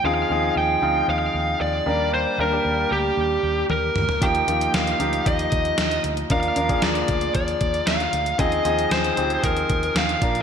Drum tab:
HH |----------------|----------------|xxxxxxxxxxxxxxxx|xxxxxxxxxxxxxxxx|
SD |----------------|----------------|----o-------o---|----o-------o---|
T1 |----------------|------------o---|----------------|----------------|
T2 |----------------|--------------o-|----------------|----------------|
FT |----------------|---------------o|----------------|----------------|
BD |----------------|----------------|o-------o-o-----|o--o--o-o-o-----|

HH |xxxxxxxxxxxxxxxx|
SD |----o-------o---|
T1 |----------------|
T2 |----------------|
FT |----------------|
BD |o-------o-o---o-|